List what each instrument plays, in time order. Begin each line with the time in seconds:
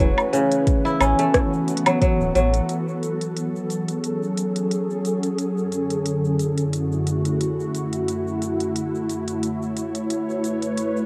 Already playing: kora A3, ambient pad E4 B4 C#5
0.00 analog synth bass E1, ambient pad E3, kora F#3, shaker
0.18 low woodblock, shaker
0.33 kora C#3, closed hi-hat, shaker
0.52 closed hi-hat, shaker
0.63 ambient pad B3
0.67 kick, closed hi-hat, shaker
0.85 kora E4, ambient pad F#4, shaker
1.00 analog synth bass A1, kora C#4, closed hi-hat, low woodblock, shaker
1.19 kora A3, ambient pad A4, closed hi-hat, shaker
1.34 kick, cross-stick, closed hi-hat, shaker
1.53 shaker
1.68 closed hi-hat, shaker
1.77 closed hi-hat
1.86 kora F#3, closed hi-hat, low woodblock, shaker
2.01 kora F#3, kick, closed hi-hat, shaker
2.20 analog synth bass D1, shaker
2.35 analog synth bass A1, kora F#3, closed hi-hat, shaker
2.54 closed hi-hat, shaker
2.69 ambient pad F#3, closed hi-hat, shaker
2.88 shaker
3.03 closed hi-hat, shaker
3.21 closed hi-hat, shaker
3.36 ambient pad G#4, closed hi-hat, shaker
3.56 ambient pad C#4, shaker
3.70 closed hi-hat, shaker
3.88 closed hi-hat, shaker
4.04 closed hi-hat, shaker
4.23 shaker
4.37 closed hi-hat, shaker
4.56 closed hi-hat, shaker
4.71 closed hi-hat, shaker
4.90 shaker
5.05 closed hi-hat, shaker
5.23 closed hi-hat, shaker
5.38 ambient pad F#2, closed hi-hat, shaker
5.51 ambient pad D3
5.58 shaker
5.72 closed hi-hat, shaker
5.90 closed hi-hat, shaker
5.95 ambient pad E4
6.06 closed hi-hat, shaker
6.25 shaker
6.33 ambient pad F#4
6.40 closed hi-hat, shaker
6.48 ambient pad A3
6.58 closed hi-hat, shaker
6.73 closed hi-hat, shaker
6.92 shaker
7.07 closed hi-hat, shaker
7.25 closed hi-hat, shaker
7.41 closed hi-hat, shaker
7.60 shaker
7.75 closed hi-hat, shaker
7.93 closed hi-hat, shaker
8.08 closed hi-hat, shaker
8.27 shaker
8.42 closed hi-hat, shaker
8.60 closed hi-hat, shaker
8.76 closed hi-hat, shaker
8.95 shaker
9.09 closed hi-hat, shaker
9.19 ambient pad C#5
9.28 closed hi-hat, shaker
9.43 closed hi-hat, shaker
9.62 shaker
9.77 closed hi-hat, shaker
9.91 ambient pad B4
9.95 closed hi-hat, shaker
10.10 closed hi-hat, shaker
10.30 shaker
10.44 closed hi-hat, shaker
10.62 closed hi-hat, shaker
10.78 closed hi-hat, shaker
10.97 shaker